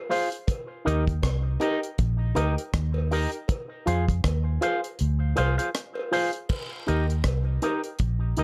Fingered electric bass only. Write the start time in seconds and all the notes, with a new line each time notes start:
0.87 D#2
1.24 C2
2.00 A#1
2.36 D2
2.74 D#2
3.87 F2
4.25 D#2
5.01 D2
5.38 C2
6.89 D#2
7.25 C2
8.01 A#1
8.38 D2